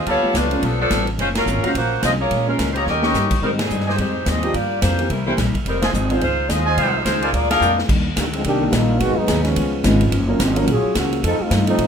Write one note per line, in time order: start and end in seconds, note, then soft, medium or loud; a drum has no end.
0.05 0.22 D2 medium
0.05 0.24 G3 soft
0.05 0.24 B3 soft
0.05 0.25 F4 soft
0.05 0.83 G4 medium
0.05 0.26 A4 soft
0.05 0.34 A4 medium
0.05 0.84 B4 medium
0.05 0.83 F5 medium
0.05 0.84 A5 medium
0.05 kick soft
0.05 ride medium
0.09 0.34 B3 medium
0.09 0.34 F4 medium
0.09 0.34 C#5 loud
0.23 0.33 F3 medium
0.23 0.33 A3 medium
0.23 0.33 B3 medium
0.23 0.34 G4 medium
0.23 muted upright bass stroke soft
0.33 0.62 C#2 medium
0.33 0.52 G3 medium
0.33 0.63 A3 medium
0.33 0.52 B3 medium
0.33 0.63 D4 medium
0.33 0.52 F4 medium
0.33 0.64 F4 medium
0.33 0.53 A4 medium
0.33 0.64 B4 medium
0.33 kick soft
0.33 snare medium
0.33 hi-hat pedal medium
0.33 ride medium
0.51 0.61 F3 medium
0.51 0.61 A3 medium
0.51 0.61 B3 medium
0.51 0.62 C#4 medium
0.51 ride soft
0.62 0.90 B1 medium
0.62 0.79 F3 medium
0.62 0.80 G3 soft
0.62 0.81 B3 soft
0.62 0.80 B3 medium
0.62 0.79 D4 medium
0.62 0.81 F4 soft
0.62 0.79 A4 medium
0.62 0.82 A4 soft
0.62 kick soft
0.62 ride medium
0.80 1.06 F3 medium
0.80 1.06 B3 medium
0.80 1.06 D4 medium
0.80 1.06 A4 medium
0.89 1.18 A1 medium
0.89 1.08 G3 medium
0.89 1.08 B3 medium
0.89 1.08 F4 medium
0.89 1.09 A4 medium
0.89 kick soft
0.89 snare medium
0.89 hi-hat pedal medium
0.89 ride medium
1.07 ride soft
1.17 1.46 F#1 medium
1.17 1.36 F#2 soft
1.17 1.36 F3 soft
1.17 1.27 G#3 medium
1.17 1.37 A#3 medium
1.17 1.27 C#4 medium
1.17 1.38 C#4 medium
1.17 1.27 F4 medium
1.17 1.27 C5 medium
1.17 kick soft
1.17 ride medium
1.35 1.62 F#3 medium
1.35 1.62 C#4 medium
1.35 1.62 F4 medium
1.35 1.62 A#4 medium
1.35 snare medium
1.35 ride medium
1.46 1.62 G#1 medium
1.46 1.64 F#2 medium
1.46 1.64 F3 soft
1.46 1.65 A#3 medium
1.46 1.65 C#4 medium
1.46 hi-hat pedal medium
1.63 1.73 F3 medium
1.63 1.76 G#3 medium
1.63 1.73 A#3 medium
1.63 1.74 C#4 medium
1.63 1.76 C#4 medium
1.63 1.76 F4 medium
1.63 1.71 F#4 medium
1.63 1.74 F#4 medium
1.63 1.76 C5 medium
1.63 1.71 C#5 medium
1.63 1.71 F5 medium
1.63 1.71 A#5 medium
1.63 muted upright bass stroke soft
1.63 ride soft
1.74 2.02 A#1 medium
1.74 1.92 F#2 soft
1.74 1.93 F3 soft
1.74 1.93 A#3 soft
1.74 2.02 A#3 medium
1.74 1.94 C#4 soft
1.74 2.02 F4 medium
1.74 2.02 F#4 medium
1.74 2.02 C5 medium
1.74 kick soft
1.74 ride medium
2.02 2.30 C2 medium
2.02 2.20 F#2 medium
2.02 2.21 F3 medium
2.02 2.21 A#3 medium
2.02 2.11 C4 medium
2.02 2.21 C#4 medium
2.02 2.11 F4 medium
2.02 2.11 G#4 medium
2.02 2.11 D#5 medium
2.02 kick soft
2.02 snare medium
2.02 hi-hat pedal medium
2.02 ride medium
2.20 2.46 A#3 medium
2.20 2.46 F4 medium
2.20 2.46 G#4 medium
2.20 2.46 C#5 medium
2.31 2.58 A#1 medium
2.31 2.48 A#2 soft
2.31 2.49 F3 soft
2.31 2.50 G#3 soft
2.31 2.50 C#4 medium
2.31 kick soft
2.31 ride medium
2.47 2.57 F3 soft
2.47 2.70 G#3 medium
2.47 2.57 A#3 medium
2.47 2.57 C#4 medium
2.47 2.70 C#4 medium
2.47 2.70 F4 medium
2.47 2.58 G#4 medium
2.47 2.70 A#4 medium
2.59 2.86 C#2 medium
2.59 2.76 A#2 medium
2.59 2.77 F3 medium
2.59 2.77 G#3 medium
2.59 2.78 C#4 medium
2.59 kick soft
2.59 snare medium
2.59 hi-hat pedal medium
2.59 ride medium
2.72 2.83 G4 medium
2.72 2.87 G#4 medium
2.72 2.76 C5 medium
2.72 2.83 C#5 medium
2.72 2.83 D#5 medium
2.72 2.83 A#5 medium
2.72 ride soft
2.76 2.87 A#3 medium
2.76 2.87 F4 medium
2.76 2.87 C#5 medium
2.86 3.13 D#2 medium
2.86 3.04 D#3 soft
2.86 3.05 A#3 soft
2.86 3.05 C#4 soft
2.86 3.29 C#4 medium
2.86 3.29 G4 medium
2.86 3.06 G4 soft
2.86 3.29 A#4 medium
2.86 3.29 D#5 medium
2.86 snare soft
3.02 3.13 D#3 medium
3.02 3.13 A#3 medium
3.02 3.14 C#4 soft
3.02 3.40 G4 medium
3.02 3.14 G4 medium
3.02 3.40 C#5 medium
3.02 3.40 D#5 medium
3.02 3.40 C#6 loud
3.02 snare medium
3.14 3.41 G2 medium
3.14 3.32 D#3 medium
3.14 3.33 A#3 medium
3.14 3.33 C#4 medium
3.14 3.34 G4 medium
3.14 snare medium
3.14 hi-hat pedal medium
3.31 kick medium
3.31 crash medium
3.41 3.60 G#2 soft
3.41 3.69 G#2 medium
3.41 3.57 D#3 medium
3.41 3.50 G3 medium
3.41 3.60 G3 soft
3.41 3.57 G#3 soft
3.41 3.57 C4 soft
3.41 3.50 C4 medium
3.41 3.61 C4 soft
3.41 3.50 D#4 medium
3.41 3.61 D#4 medium
3.41 3.58 G4 medium
3.41 3.51 A#4 medium
3.41 kick soft
3.59 3.85 D#3 medium
3.59 3.85 G3 medium
3.59 3.86 C4 medium
3.59 3.86 G#4 medium
3.59 snare medium
3.59 ride medium
3.70 3.97 G2 medium
3.70 3.88 G#2 medium
3.70 3.88 G3 medium
3.70 3.89 C4 soft
3.70 3.89 D#4 medium
3.70 hi-hat pedal medium
3.80 snare soft
3.87 3.99 G#3 medium
3.87 3.99 D#4 medium
3.87 3.95 G4 medium
3.87 3.99 G4 medium
3.87 3.95 C5 medium
3.87 3.99 C5 medium
3.87 3.95 D#5 medium
3.87 3.94 G#5 medium
3.87 snare soft
3.97 4.25 F2 medium
3.97 4.15 G#2 soft
3.97 4.16 G3 soft
3.97 4.25 G#3 medium
3.97 4.17 C4 soft
3.97 4.25 D#4 medium
3.97 4.17 D#4 soft
3.97 4.25 G4 medium
3.97 4.25 C5 medium
3.97 kick soft
3.97 ride medium
4.25 4.53 D#2 medium
4.25 4.43 G#2 medium
4.25 4.44 G3 medium
4.25 4.44 C4 medium
4.25 4.55 C4 medium
4.25 4.45 D#4 medium
4.25 4.53 G4 medium
4.25 4.55 G#4 medium
4.25 4.55 D#5 medium
4.25 kick soft
4.25 snare medium
4.25 hi-hat pedal medium
4.25 ride medium
4.43 4.53 F3 medium
4.43 4.53 A#3 medium
4.43 4.53 D4 medium
4.43 4.54 G4 medium
4.43 ride soft
4.54 4.72 G2 soft
4.54 4.81 G2 medium
4.54 4.72 F3 soft
4.54 4.81 A#3 medium
4.54 4.73 A#3 soft
4.54 4.73 D4 soft
4.54 4.80 F4 medium
4.54 4.80 G4 medium
4.54 4.82 D5 medium
4.54 kick soft
4.54 ride medium
4.81 5.09 F2 medium
4.81 4.99 G2 medium
4.81 5.00 F3 medium
4.81 5.08 A#3 medium
4.81 5.00 A#3 medium
4.81 5.01 D4 medium
4.81 5.08 F4 medium
4.81 5.08 G4 medium
4.81 5.08 C5 medium
4.81 kick soft
4.81 snare medium
4.81 hi-hat pedal medium
4.81 ride medium
4.98 5.09 E3 medium
4.98 5.09 A#3 medium
4.98 5.09 C4 medium
4.98 5.09 G4 medium
4.98 ride soft
5.09 5.37 C2 medium
5.09 5.27 C3 soft
5.09 5.28 G3 soft
5.09 5.26 G3 medium
5.09 5.28 A#3 soft
5.09 5.26 C4 medium
5.09 5.26 E4 medium
5.09 5.29 E4 soft
5.09 5.26 A#4 medium
5.09 kick soft
5.09 ride medium
5.26 5.36 E3 medium
5.26 5.37 A#3 medium
5.26 5.37 C4 medium
5.26 5.34 E4 medium
5.26 5.37 G4 medium
5.26 5.34 A#4 medium
5.26 5.34 C5 medium
5.26 5.34 G5 medium
5.37 5.53 A#1 medium
5.37 5.55 C3 medium
5.37 5.56 G3 medium
5.37 5.56 A#3 medium
5.37 5.57 E4 medium
5.37 kick soft
5.37 snare medium
5.37 hi-hat pedal medium
5.37 ride medium
5.54 muted upright bass stroke soft
5.54 kick soft
5.54 ride soft
5.65 5.93 F1 medium
5.65 5.83 F2 soft
5.65 5.84 D#3 soft
5.65 5.82 G3 medium
5.65 5.84 G#3 medium
5.65 5.82 C4 medium
5.65 5.82 D#4 medium
5.65 5.83 A#4 medium
5.65 kick soft
5.65 ride medium
5.69 5.85 C4 medium
5.82 6.12 F3 medium
5.82 6.12 C4 medium
5.82 6.11 D#4 medium
5.82 5.90 F4 medium
5.82 6.12 G#4 medium
5.82 5.90 C5 medium
5.82 5.90 D#5 medium
5.82 5.90 G#5 medium
5.82 snare medium
5.82 ride medium
5.92 6.21 G#1 loud
5.92 6.11 F2 soft
5.92 6.11 D#3 medium
5.92 6.12 G#3 medium
5.92 6.12 C4 medium
5.92 hi-hat pedal medium
6.10 6.20 F3 medium
6.10 6.21 G#3 medium
6.10 6.21 C4 medium
6.10 6.21 D#4 medium
6.10 6.21 F4 medium
6.10 6.21 G#4 medium
6.10 6.21 C5 medium
6.10 ride soft
6.21 6.49 C#2 medium
6.21 6.39 F2 soft
6.21 6.40 D#3 soft
6.21 6.48 G#3 medium
6.21 6.40 G#3 soft
6.21 6.41 C4 soft
6.21 6.48 D#4 medium
6.21 6.48 F4 medium
6.21 6.48 C5 medium
6.21 kick soft
6.21 ride medium
6.49 6.76 D#2 medium
6.49 6.67 F2 medium
6.49 6.67 D#3 medium
6.49 6.68 G#3 medium
6.49 6.77 C4 medium
6.49 6.68 C4 medium
6.49 6.77 F4 medium
6.49 6.77 G#4 medium
6.49 6.77 D#5 loud
6.49 kick soft
6.49 snare medium
6.49 hi-hat pedal medium
6.49 ride medium
6.65 7.03 F4 medium
6.65 7.03 C5 medium
6.65 7.03 D#5 medium
6.65 7.03 G#5 loud
6.77 7.04 C2 medium
6.77 6.95 F2 soft
6.77 6.95 D#3 soft
6.77 7.04 G#3 medium
6.77 6.96 G#3 soft
6.77 6.96 C4 medium
6.77 7.04 D#4 medium
6.77 7.03 F4 medium
6.77 7.04 C5 medium
6.77 kick soft
6.77 ride medium
7.04 7.32 C#2 medium
7.04 7.23 F2 soft
7.04 7.23 D#3 medium
7.04 7.31 G#3 medium
7.04 7.24 G#3 medium
7.04 7.24 C4 medium
7.04 7.31 D#4 medium
7.04 7.31 F4 medium
7.04 7.31 C5 medium
7.04 kick soft
7.04 snare medium
7.04 hi-hat pedal medium
7.04 ride medium
7.21 7.29 F4 medium
7.21 7.29 A#4 medium
7.21 7.29 D5 medium
7.21 7.30 G#5 medium
7.21 ride soft
7.32 7.60 D2 medium
7.32 7.50 A#2 soft
7.32 7.51 F3 soft
7.32 7.52 G#3 soft
7.32 7.50 A#3 medium
7.32 7.52 D4 soft
7.32 7.50 F4 medium
7.32 7.49 G#4 medium
7.32 7.50 D5 loud
7.32 kick soft
7.32 ride medium
7.49 7.60 F3 medium
7.49 7.60 A#3 medium
7.49 7.76 D4 medium
7.49 7.60 D4 medium
7.49 7.76 G#4 medium
7.49 7.60 G#4 medium
7.49 7.76 A#4 medium
7.49 7.76 F5 loud
7.49 snare medium
7.49 ride medium
7.60 7.88 F2 medium
7.60 7.78 A#2 medium
7.60 7.79 F3 medium
7.60 7.79 G#3 medium
7.60 7.80 D4 medium
7.60 7.72 F4 medium
7.60 7.72 A#4 medium
7.60 7.72 D5 medium
7.60 7.72 G5 medium
7.60 hi-hat pedal medium
7.78 snare medium
7.88 8.16 D#2 medium
7.88 8.06 D#3 soft
7.88 8.07 G3 medium
7.88 8.08 A#3 medium
7.88 8.08 D4 soft
7.88 kick medium
7.88 crash medium
8.16 8.44 D2 medium
8.16 8.25 D3 medium
8.16 8.34 D#3 medium
8.16 8.25 D#3 medium
8.16 8.35 G3 medium
8.16 8.25 G3 medium
8.16 8.35 A#3 medium
8.16 8.25 A#3 medium
8.16 8.35 D4 medium
8.16 kick soft
8.16 snare medium
8.16 hi-hat pedal medium
8.16 ride medium
8.33 8.44 D3 medium
8.33 8.45 F3 medium
8.33 8.44 G#3 medium
8.33 8.44 C4 medium
8.33 ride soft
8.43 8.72 C2 medium
8.43 8.62 D#3 soft
8.43 8.71 D#3 medium
8.43 8.62 G3 soft
8.43 8.63 A#3 medium
8.43 8.71 A#3 medium
8.43 8.71 D4 medium
8.43 8.63 D4 soft
8.43 8.71 G4 loud
8.43 kick soft
8.43 ride medium
8.61 8.71 D#3 medium
8.61 8.71 G3 medium
8.61 8.72 A#3 medium
8.61 8.72 D4 medium
8.61 8.72 G4 medium
8.71 9.00 A#1 loud
8.71 8.89 D#3 medium
8.71 8.90 G3 medium
8.71 8.90 A#3 medium
8.71 9.01 A#3 medium
8.71 8.90 D4 medium
8.71 9.01 D4 medium
8.71 9.01 D#4 medium
8.71 9.01 F4 medium
8.71 kick soft
8.71 snare medium
8.71 hi-hat pedal medium
8.71 ride medium
8.98 9.16 G#1 medium
8.98 9.17 G#2 soft
8.98 9.17 D#3 medium
8.98 9.18 F#3 soft
8.98 9.16 G#3 medium
8.98 9.16 B3 medium
8.98 9.18 B3 soft
8.98 9.19 D#4 medium
8.98 9.17 F#4 loud
8.98 kick soft
8.98 ride medium
9.17 9.45 F#3 medium
9.17 9.44 G#3 medium
9.17 9.44 B3 medium
9.17 9.45 D#4 medium
9.17 muted upright bass stroke soft
9.27 9.55 D#2 medium
9.27 9.45 G#2 medium
9.27 9.43 F#3 medium
9.27 9.46 F#3 medium
9.27 9.43 G#3 soft
9.27 9.43 B3 soft
9.27 9.46 B3 medium
9.27 9.43 D#4 medium
9.27 9.46 D#4 medium
9.27 9.43 G#4 medium
9.27 kick soft
9.27 snare medium
9.27 hi-hat pedal medium
9.27 ride medium
9.44 9.97 F3 medium
9.44 9.97 G#3 medium
9.44 9.97 B3 medium
9.44 9.97 C#4 medium
9.44 snare soft
9.44 ride soft
9.55 9.83 C#2 medium
9.55 9.73 C#3 soft
9.55 9.74 G#3 soft
9.55 9.74 B3 medium
9.55 9.75 F4 soft
9.55 kick soft
9.55 ride medium
9.83 10.11 G#1 loud
9.83 10.01 C#3 medium
9.83 10.12 F3 medium
9.83 10.12 G#3 medium
9.83 10.02 G#3 medium
9.83 10.12 B3 medium
9.83 10.02 B3 medium
9.83 10.12 C#4 medium
9.83 10.12 D#4 medium
9.83 10.03 F4 medium
9.83 kick soft
9.83 snare medium
9.83 hi-hat pedal medium
9.83 ride medium
10.01 ride medium
10.11 10.39 F#1 medium
10.11 10.29 F#2 medium
10.11 10.30 F3 medium
10.11 10.30 A#3 medium
10.11 10.31 C#4 medium
10.11 kick soft
10.11 ride medium
10.28 10.38 F#3 medium
10.28 10.39 A#3 medium
10.28 10.39 C#4 medium
10.28 10.39 F4 medium
10.28 10.39 A#4 medium
10.39 10.67 G#1 medium
10.39 10.57 F#2 medium
10.39 10.57 C#3 medium
10.39 10.57 F3 medium
10.39 10.56 F3 medium
10.39 10.56 G#3 medium
10.39 10.58 A#3 medium
10.39 10.56 C4 medium
10.39 10.58 C#4 medium
10.39 kick soft
10.39 snare medium
10.39 hi-hat pedal medium
10.39 ride medium
10.56 10.68 F3 medium
10.56 10.66 F#3 medium
10.56 10.68 F#3 medium
10.56 10.66 A#3 medium
10.56 10.68 A#3 medium
10.56 10.66 C#4 medium
10.56 10.68 C#4 medium
10.56 10.67 F4 medium
10.56 10.67 A#4 medium
10.56 ride medium
10.66 10.83 A#1 medium
10.66 10.84 F#2 soft
10.66 10.85 F3 soft
10.66 10.86 A#3 soft
10.66 10.86 C#4 soft
10.66 kick soft
10.66 ride medium
10.71 10.95 F#3 medium
10.71 10.95 C#4 medium
10.71 10.95 F4 medium
10.71 10.95 G#4 loud
10.84 muted upright bass stroke soft
10.94 11.22 C#2 medium
10.94 11.12 F#2 medium
10.94 11.13 F3 medium
10.94 11.23 F3 medium
10.94 11.13 A#3 medium
10.94 11.14 C#4 medium
10.94 11.23 F#4 medium
10.94 kick soft
10.94 snare medium
10.94 hi-hat pedal medium
10.94 ride medium
10.98 11.23 C#3 medium
10.98 11.23 A#3 medium
11.12 ride soft
11.22 11.40 F2 soft
11.22 11.39 F2 medium
11.22 11.41 D#3 medium
11.22 11.39 F3 medium
11.22 11.41 A3 medium
11.22 11.39 C4 medium
11.22 11.42 C4 soft
11.22 11.39 D#4 medium
11.22 11.39 A4 loud
11.22 kick soft
11.22 ride medium
11.40 11.67 A3 medium
11.40 11.67 C4 medium
11.40 11.67 D#4 medium
11.40 11.68 F4 medium
11.40 muted upright bass stroke soft
11.50 11.68 F2 soft
11.50 11.78 G2 medium
11.50 11.69 D#3 medium
11.50 11.69 A3 medium
11.50 11.69 C4 medium
11.50 kick soft
11.50 snare medium
11.50 hi-hat pedal medium
11.50 ride medium
11.67 11.77 F3 medium
11.67 11.87 F3 medium
11.67 11.77 A3 medium
11.67 11.87 A3 medium
11.67 11.78 C4 medium
11.67 11.87 C4 medium
11.67 11.78 D#4 medium
11.67 11.87 D#4 loud
11.67 11.78 A4 medium
11.67 ride soft
11.78 11.87 F2 soft
11.78 11.87 A2 medium
11.78 11.87 D#3 soft
11.78 11.87 A3 soft
11.78 11.87 C4 soft
11.78 kick soft
11.78 ride medium